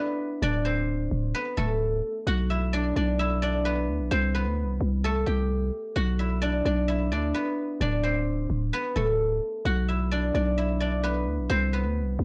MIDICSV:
0, 0, Header, 1, 3, 480
1, 0, Start_track
1, 0, Tempo, 461538
1, 438, Time_signature, 4, 2, 24, 8
1, 12733, End_track
2, 0, Start_track
2, 0, Title_t, "Guzheng"
2, 0, Program_c, 0, 107
2, 0, Note_on_c, 0, 57, 71
2, 0, Note_on_c, 0, 59, 63
2, 0, Note_on_c, 0, 62, 66
2, 0, Note_on_c, 0, 64, 63
2, 0, Note_on_c, 0, 66, 79
2, 0, Note_on_c, 0, 71, 79
2, 0, Note_on_c, 0, 74, 82
2, 0, Note_on_c, 0, 76, 87
2, 0, Note_on_c, 0, 78, 95
2, 187, Note_off_c, 0, 78, 0
2, 437, Note_off_c, 0, 74, 0
2, 441, Note_on_c, 0, 74, 90
2, 445, Note_off_c, 0, 62, 0
2, 449, Note_on_c, 0, 62, 72
2, 675, Note_on_c, 0, 72, 72
2, 683, Note_on_c, 0, 60, 60
2, 737, Note_off_c, 0, 59, 0
2, 737, Note_off_c, 0, 71, 0
2, 1034, Note_off_c, 0, 57, 0
2, 1057, Note_off_c, 0, 66, 0
2, 1268, Note_off_c, 0, 76, 0
2, 1400, Note_on_c, 0, 71, 91
2, 1408, Note_on_c, 0, 59, 72
2, 1462, Note_off_c, 0, 60, 0
2, 1462, Note_off_c, 0, 72, 0
2, 1635, Note_on_c, 0, 69, 81
2, 1643, Note_on_c, 0, 57, 61
2, 2200, Note_off_c, 0, 64, 0
2, 2360, Note_on_c, 0, 78, 98
2, 2362, Note_off_c, 0, 74, 0
2, 2368, Note_on_c, 0, 66, 74
2, 2600, Note_on_c, 0, 76, 70
2, 2609, Note_on_c, 0, 64, 59
2, 2840, Note_on_c, 0, 74, 85
2, 2844, Note_off_c, 0, 62, 0
2, 2848, Note_on_c, 0, 62, 64
2, 3077, Note_off_c, 0, 74, 0
2, 3082, Note_on_c, 0, 74, 72
2, 3086, Note_off_c, 0, 62, 0
2, 3090, Note_on_c, 0, 62, 57
2, 3316, Note_off_c, 0, 76, 0
2, 3320, Note_on_c, 0, 76, 83
2, 3325, Note_off_c, 0, 64, 0
2, 3329, Note_on_c, 0, 64, 63
2, 3531, Note_off_c, 0, 71, 0
2, 3554, Note_off_c, 0, 74, 0
2, 3558, Note_on_c, 0, 74, 81
2, 3562, Note_off_c, 0, 62, 0
2, 3566, Note_on_c, 0, 62, 66
2, 3797, Note_on_c, 0, 71, 82
2, 3801, Note_off_c, 0, 59, 0
2, 3805, Note_on_c, 0, 59, 66
2, 3919, Note_off_c, 0, 69, 0
2, 4032, Note_off_c, 0, 78, 0
2, 4275, Note_on_c, 0, 72, 95
2, 4284, Note_on_c, 0, 60, 75
2, 4338, Note_off_c, 0, 59, 0
2, 4338, Note_off_c, 0, 71, 0
2, 4520, Note_on_c, 0, 71, 71
2, 4528, Note_on_c, 0, 59, 57
2, 4582, Note_off_c, 0, 60, 0
2, 4582, Note_off_c, 0, 72, 0
2, 4902, Note_off_c, 0, 66, 0
2, 5105, Note_off_c, 0, 57, 0
2, 5112, Note_off_c, 0, 76, 0
2, 5244, Note_on_c, 0, 69, 88
2, 5252, Note_on_c, 0, 57, 72
2, 5474, Note_on_c, 0, 67, 73
2, 5478, Note_off_c, 0, 74, 0
2, 5482, Note_on_c, 0, 79, 62
2, 6045, Note_off_c, 0, 64, 0
2, 6195, Note_on_c, 0, 78, 96
2, 6204, Note_on_c, 0, 66, 80
2, 6258, Note_off_c, 0, 67, 0
2, 6258, Note_off_c, 0, 79, 0
2, 6438, Note_on_c, 0, 76, 70
2, 6447, Note_on_c, 0, 64, 52
2, 6477, Note_off_c, 0, 62, 0
2, 6651, Note_off_c, 0, 71, 0
2, 6673, Note_on_c, 0, 74, 88
2, 6681, Note_on_c, 0, 62, 68
2, 6917, Note_off_c, 0, 74, 0
2, 6921, Note_on_c, 0, 74, 71
2, 6925, Note_off_c, 0, 62, 0
2, 6930, Note_on_c, 0, 62, 60
2, 7152, Note_off_c, 0, 76, 0
2, 7156, Note_on_c, 0, 76, 88
2, 7160, Note_off_c, 0, 64, 0
2, 7164, Note_on_c, 0, 64, 65
2, 7398, Note_off_c, 0, 74, 0
2, 7402, Note_on_c, 0, 74, 83
2, 7406, Note_off_c, 0, 62, 0
2, 7410, Note_on_c, 0, 62, 65
2, 7528, Note_off_c, 0, 69, 0
2, 7638, Note_on_c, 0, 71, 77
2, 7642, Note_off_c, 0, 59, 0
2, 7646, Note_on_c, 0, 59, 62
2, 7867, Note_off_c, 0, 78, 0
2, 8118, Note_off_c, 0, 74, 0
2, 8122, Note_on_c, 0, 74, 88
2, 8126, Note_off_c, 0, 62, 0
2, 8130, Note_on_c, 0, 62, 71
2, 8356, Note_on_c, 0, 72, 73
2, 8364, Note_on_c, 0, 60, 59
2, 8418, Note_off_c, 0, 59, 0
2, 8418, Note_off_c, 0, 71, 0
2, 8714, Note_off_c, 0, 57, 0
2, 8738, Note_off_c, 0, 66, 0
2, 8948, Note_off_c, 0, 76, 0
2, 9081, Note_on_c, 0, 71, 92
2, 9089, Note_on_c, 0, 59, 72
2, 9143, Note_off_c, 0, 60, 0
2, 9143, Note_off_c, 0, 72, 0
2, 9315, Note_on_c, 0, 69, 77
2, 9324, Note_on_c, 0, 57, 62
2, 9880, Note_off_c, 0, 64, 0
2, 10040, Note_on_c, 0, 78, 101
2, 10042, Note_off_c, 0, 74, 0
2, 10048, Note_on_c, 0, 66, 77
2, 10280, Note_on_c, 0, 76, 68
2, 10289, Note_on_c, 0, 64, 63
2, 10519, Note_on_c, 0, 74, 86
2, 10523, Note_off_c, 0, 62, 0
2, 10528, Note_on_c, 0, 62, 67
2, 10756, Note_off_c, 0, 74, 0
2, 10760, Note_on_c, 0, 74, 78
2, 10765, Note_off_c, 0, 62, 0
2, 10769, Note_on_c, 0, 62, 56
2, 10996, Note_off_c, 0, 76, 0
2, 11000, Note_on_c, 0, 76, 83
2, 11004, Note_off_c, 0, 64, 0
2, 11008, Note_on_c, 0, 64, 61
2, 11212, Note_off_c, 0, 71, 0
2, 11232, Note_off_c, 0, 74, 0
2, 11236, Note_on_c, 0, 74, 83
2, 11241, Note_off_c, 0, 62, 0
2, 11245, Note_on_c, 0, 62, 66
2, 11476, Note_on_c, 0, 71, 79
2, 11480, Note_off_c, 0, 59, 0
2, 11484, Note_on_c, 0, 59, 67
2, 11599, Note_off_c, 0, 69, 0
2, 11712, Note_off_c, 0, 78, 0
2, 11955, Note_on_c, 0, 72, 101
2, 11963, Note_on_c, 0, 60, 75
2, 12018, Note_off_c, 0, 59, 0
2, 12018, Note_off_c, 0, 71, 0
2, 12199, Note_on_c, 0, 71, 71
2, 12207, Note_on_c, 0, 59, 58
2, 12262, Note_off_c, 0, 60, 0
2, 12262, Note_off_c, 0, 72, 0
2, 12582, Note_off_c, 0, 66, 0
2, 12733, Note_off_c, 0, 57, 0
2, 12733, Note_off_c, 0, 59, 0
2, 12733, Note_off_c, 0, 62, 0
2, 12733, Note_off_c, 0, 64, 0
2, 12733, Note_off_c, 0, 71, 0
2, 12733, Note_off_c, 0, 74, 0
2, 12733, Note_off_c, 0, 76, 0
2, 12733, End_track
3, 0, Start_track
3, 0, Title_t, "808-style bass"
3, 0, Program_c, 1, 38
3, 438, Note_on_c, 1, 26, 109
3, 1129, Note_off_c, 1, 26, 0
3, 1159, Note_on_c, 1, 26, 99
3, 1389, Note_off_c, 1, 26, 0
3, 1638, Note_on_c, 1, 26, 101
3, 2099, Note_off_c, 1, 26, 0
3, 2358, Note_on_c, 1, 35, 110
3, 3049, Note_off_c, 1, 35, 0
3, 3078, Note_on_c, 1, 35, 101
3, 4039, Note_on_c, 1, 38, 101
3, 4054, Note_off_c, 1, 35, 0
3, 4158, Note_on_c, 1, 35, 99
3, 4174, Note_off_c, 1, 38, 0
3, 4272, Note_off_c, 1, 35, 0
3, 4279, Note_on_c, 1, 36, 108
3, 4639, Note_on_c, 1, 38, 99
3, 4654, Note_off_c, 1, 36, 0
3, 4818, Note_on_c, 1, 36, 98
3, 4834, Note_off_c, 1, 38, 0
3, 4989, Note_off_c, 1, 36, 0
3, 4998, Note_on_c, 1, 36, 100
3, 5459, Note_off_c, 1, 36, 0
3, 5478, Note_on_c, 1, 36, 101
3, 5939, Note_off_c, 1, 36, 0
3, 6198, Note_on_c, 1, 35, 107
3, 6889, Note_off_c, 1, 35, 0
3, 6918, Note_on_c, 1, 35, 106
3, 7398, Note_on_c, 1, 38, 99
3, 7414, Note_off_c, 1, 35, 0
3, 7626, Note_off_c, 1, 38, 0
3, 8118, Note_on_c, 1, 26, 110
3, 8810, Note_off_c, 1, 26, 0
3, 8839, Note_on_c, 1, 26, 101
3, 9069, Note_off_c, 1, 26, 0
3, 9318, Note_on_c, 1, 26, 102
3, 9779, Note_off_c, 1, 26, 0
3, 10038, Note_on_c, 1, 35, 112
3, 10729, Note_off_c, 1, 35, 0
3, 10758, Note_on_c, 1, 35, 108
3, 11718, Note_on_c, 1, 38, 104
3, 11734, Note_off_c, 1, 35, 0
3, 11839, Note_on_c, 1, 35, 101
3, 11854, Note_off_c, 1, 38, 0
3, 11952, Note_off_c, 1, 35, 0
3, 11958, Note_on_c, 1, 36, 106
3, 12318, Note_on_c, 1, 38, 103
3, 12334, Note_off_c, 1, 36, 0
3, 12498, Note_on_c, 1, 36, 101
3, 12514, Note_off_c, 1, 38, 0
3, 12669, Note_off_c, 1, 36, 0
3, 12678, Note_on_c, 1, 36, 103
3, 12733, Note_off_c, 1, 36, 0
3, 12733, End_track
0, 0, End_of_file